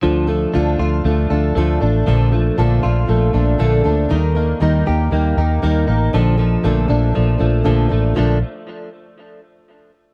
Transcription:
X:1
M:4/4
L:1/8
Q:1/4=118
K:Bb
V:1 name="Steel-string acoustic guitar"
[D,F,DFA] [DFA] [D,F,DFA] [DFA] [F,DFA] [DFA] [D,F,DFA] [DFA] | [B,,D,F,B,DA] [F,B,DA] [B,,D,F,B,DA] [F,B,DA] [F,B,DA] [F,B,DA] [B,,D,F,B,DA] [F,B,DA] | [E,G,B,EB] [B,EB] [E,G,B,EB] [B,EB] [G,B,EB] [B,EB] [E,G,B,EB] [B,EB] | [B,,D,F,B,DA] [F,B,DA] [B,,D,F,B,DA] [F,B,DA] [F,B,DA] [F,B,DA] [B,,D,F,B,DA] [F,B,DA] |
[B,,D,F,B,DA] z6 z |]
V:2 name="Clean electric guitar"
F, A, D F A, D A, D | F, A, D F A, D A, D | E, B, E G B, E B, E | F, F, A, D F, A, F, A, |
[F,A,D] z6 z |]
V:3 name="Fingered electric bass" clef=bass
D,,2 D,, D,, D,, D,, D,, A,,, | B,,,2 B,,, B,,, B,,, B,,, B,,, D,, | E,,2 E,, E,, E,, E,, E,, A,,, | B,,,2 B,,, B,,, B,,, B,,, B,,, A,,, |
B,,, z6 z |]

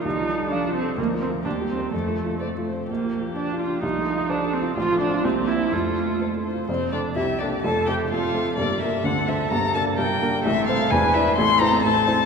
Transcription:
X:1
M:2/4
L:1/8
Q:1/4=128
K:Fmix
V:1 name="Violin"
A4 | B2 G2 | A2 d c | G4 |
F2 A2 | [K:F] F2 G2 | A2 A c | c d e d |
a g f2 | d e ^f e | b a g2 | e f ^g e |
c' b a2 |]
V:2 name="Viola"
E2 D C | B, C D C | A,3 z | B,2 D F |
E2 D C | [K:F] F D C E | F3 z | C D E D |
A G F2 | B,2 C2 | B,4 | C2 D2 |
C4 |]
V:3 name="Grand piano"
(3C,, F, A (3f F A | (3D,, F, [FB] (3E,, G, [CB] | (3F,, F, F (3c F C | (3B,,, F, F (3d F D |
(3C,, A, F (3c A F | [K:F] (3A,,, A, [CF] (3C,, B, [CE] | (3F,, A, F (3c A F | [F,,,F,,] [A,CA] [C,,C,] [B,DA] |
[F,,,F,,] [A,CA] [F,,,F,,] [A,CA] | [G,,,G,,] [G,B,B] [D,,D,] [A,Dc] | [G,,,G,,] [B,DB] [G,,,G,,] [B,DB] | [A,,,A,,] [A,Cc] [E,,,E,,] [=B,Ed] |
[A,,,A,,] [CEc] [A,,,A,,] [CEc] |]
V:4 name="Cello"
E, G, F,2 | F,2 E,2 | F,3 z | F,4- |
F,4 | [K:F] F,2 B,2 | A,3 z | z2 G2 |
F2 A2 | B2 A2- | A2 B2 | A2 =B2 |
A4 |]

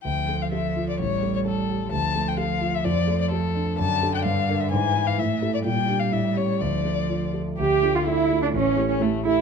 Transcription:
X:1
M:2/4
L:1/16
Q:1/4=128
K:Dm
V:1 name="Violin"
g3 f e3 d | ^c3 c A4 | a3 g f3 e | d3 d A4 |
a3 g f3 e | ^g3 f e3 d | g3 f e2 ^c2 | d6 z2 |
G3 F E3 D | ^C3 C A,2 E2 |]
V:2 name="Grand piano"
D,,2 A,2 A2 F2 | A,,,2 A,2 A2 G2 | D,,2 A,2 A2 F2 | F,,2 A,2 A2 D2 |
^F,,2 [DA]2 G,,2 [DB]2 | ^G,,2 [E=B]2 A,,2 [EA]2 | B,,2 [DG]2 A,,2 [^CG]2 | D,,2 A,2 F2 A2 |
D,,2 [A,DF]2 [A,DF]2 [A,DF]2 | A,,,2 [A,EG]2 [A,EG]2 [A,EG]2 |]
V:3 name="Cello"
F,8 | G,8 | F,8- | F,8 |
D,8 | E,4 A,4 | G,8 | F,6 z2 |
G3 F E3 D | ^C3 C A,2 E2 |]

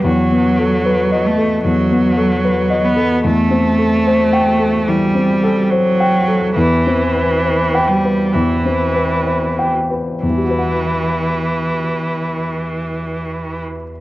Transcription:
X:1
M:4/4
L:1/8
Q:1/4=70
K:Em
V:1 name="Upright piano"
(3E,, B, A (3B ^d A (3E,, B, A (3B d A | (3E,, C A (3c g A (3E, C A (3c g A | (3E,, C B (3c g B (3E,, C B (3c g B | [E,,E,G,FBf]8 |]
V:2 name="Cello" clef=bass
F,3 A, F,3 B, | A,4 G,2 F,2 | E,3 G, E,3 z | E,8 |]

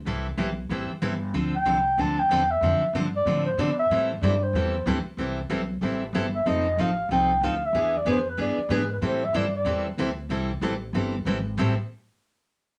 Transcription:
X:1
M:4/4
L:1/8
Q:"Swing" 1/4=188
K:Am
V:1 name="Clarinet"
z8 | z g3 a g2 e- | e2 z d2 c d e- | e z d c3 z2 |
z6 z e | _e2 f2 g2 f =e- | e d c B d2 B B | c e d d2 z3 |
z8 | z8 |]
V:2 name="Steel-string acoustic guitar"
[E,G,CEA] z [E,G,CEA] z [E,G,CEA] z [E,G,CEA] z | [D,F,CDA] z [D,F,CDA] z [D,F,CDA] z [D,F,CDA] z | [D,F,CDA] z [D,F,CDA] z [D,F,CDA] z [D,F,CDA] z | [E,G,CEA] z [E,G,CEA] z [E,G,CEA] z [E,G,CEA] z |
[E,G,CEA] z [E,G,CEA] z [E,G,CEA] z [E,G,CEA] z | [F,C_EA] z [F,CEA] z [F,CEA] z [F,CEA] z | [E,B,D^G] z [E,B,DG] z [E,B,DG] z [E,B,DG] z | [E,G,CEA] z [E,G,CEA] z [E,G,CEA] z [E,G,CEA] z |
[E,G,CEA] z [E,G,CEA] z [E,G,CEA] z [E,G,CEA] z | [A,,E,G,CEA] z6 z |]
V:3 name="Steel-string acoustic guitar"
z8 | z8 | z8 | [E,G,CEA] z [E,G,CEA] z [E,G,CEA] z [E,G,CEA] z |
[E,G,CEA] z [E,G,CEA] z [E,G,CEA] z [E,G,CEA] z | [F,C_EA] z [F,CEA] z [F,CEA] z [F,CEA] z | [E,B,D^GB] z [E,B,DGB] z [E,B,DGB] z [E,B,DGB] z | [E,G,CEA] z [E,G,CEA] z [E,G,CEA] z [E,G,CEA] z |
[E,G,CEA] z [E,G,CEA] z [E,G,CEA] z [E,G,CEA] z | [A,,E,G,CEA] z6 z |]
V:4 name="Upright bass" clef=bass
C,,2 B,,,2 A,,, z G,,,2 | D,,2 C,,2 D,,2 E,,2 | F,, z G,,2 A,,2 B,,2 | A,,2 G,,2 E,,2 D,, z |
C,,2 B,,,2 A,,,2 G,,,2 | F,,,2 A,,,2 C,,2 D,,2 | E,,2 F,,2 G,, z ^G,,2 | A,,2 G,,2 E,,2 D,,2 |
C,,2 A,,,2 G,,,2 ^G,,,2 | A,,, z6 z |]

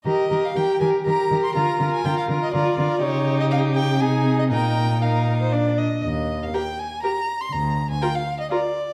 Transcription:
X:1
M:3/4
L:1/16
Q:1/4=121
K:Eb
V:1 name="Violin"
e3 f g2 a2 b3 c' | b3 a g f2 e d4 | _d3 e f2 g2 a3 e | g4 f4 z4 |
e3 f g2 a2 b3 c' | b3 a g f2 e d4 |]
V:2 name="Violin"
B2 B2 B2 B2 B2 B2 | B2 B2 B2 B2 B2 B2 | G8 A4 | B4 B3 c d2 e2 |
z4 B4 B4 | z4 B4 B4 |]
V:3 name="Viola"
G2 G2 G2 G2 G2 G2 | F2 F2 F2 F2 F2 F2 | E8 E4 | E4 E4 D2 z2 |
z4 G4 G4 | z4 F4 F4 |]
V:4 name="Cello" clef=bass
E,2 E,2 E,2 E,2 E,2 E,2 | D,2 D,2 D,2 D,2 D,2 D,2 | _D,8 C,4 | B,,8- B,,2 z2 |
E,,4 z8 | D,,4 z8 |]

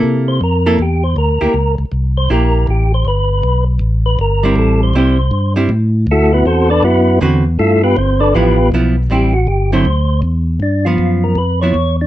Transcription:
X:1
M:4/4
L:1/8
Q:"Swing" 1/4=159
K:Gmix
V:1 name="Tonewheel organ"
z c _B2 G c B2- | _B z2 c ^A2 G c | B3 z2 B _B2 | A c c3 z3 |
[A,E^FA] [B,EFB] [CFAc] [DABd] [B,EFB]2 z2 | [A,EFA] [B,FGB] [Cc] [DABd] [B,FGB]2 z2 | G ^F G c3 z2 | D F2 _B =B ^c2 D |]
V:2 name="Hollow-body jazz guitar"
[_B,EA]2 z [B,EA] z3 [B,EG] | z4 [^A,EG]3 z | z6 z [G,CE]- | [G,CE]2 [G,CE] z2 [G,CE] z2 |
z6 [D,C^FB] z | z4 [F,B,E] z [F,B,E] z | [G,CE] z2 [D,^F,CE] z4 | z [F,B,]3 z [F,B,E] z2 |]
V:3 name="Tonewheel organ" clef=bass
C,2 F,,2 E,,2 D,, D,, | ^C,, C,, =C,,2 ^A,,,2 =A,,,2 | G,,,2 B,,,2 A,,,2 G,,,2 | A,,,2 C,,2 G,,2 A,,2 |
D,,2 E,,2 ^F,,2 E,,2 | G,,2 G,,,2 A,,,2 B,,,2 | A,,,2 G,,,2 D,,2 E,,2 | G,,2 ^F,,2 =F,,2 E,,2 |]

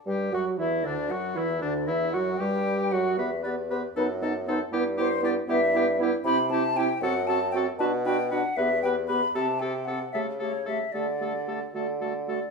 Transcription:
X:1
M:6/8
L:1/8
Q:3/8=77
K:Em
V:1 name="Flute"
g f e d f e | d e f g2 f | e d c B ^d c | B c d e2 z |
b a g f a g | a g f e g b | a g f e ^c e | d3 z2 d |]
V:2 name="Oboe"
G F E D F E | D E F G2 F | B B B A A A | G G G G G G |
G G G A A A | B B B B B B | A A A A A A | A A A A A A |]
V:3 name="Clarinet"
G F E D F E | D E F G2 F | G G G ^D D D | E E E E E E |
E E E F F F | F F F G G G | G G G G G G | G G G F F F |]
V:4 name="French horn"
G, F, E, D, F, E, | D, E, F, G,2 F, | B, B, B, B, B, B, | B, B, B, B, B, B, |
C C C C C C | D D D B, B, B, | C C C A, A, A, | A, A, A, A, A, A, |]
V:5 name="Bassoon" clef=bass
G,, F,, E,, D,, F,, E,, | D,, E,, F,, G,,2 F,, | E,,3 F,,3 | G,,3 G,,3 |
C,3 F,,3 | B,,3 E,,3 | C,3 ^C,3 | D,3 D,3 |]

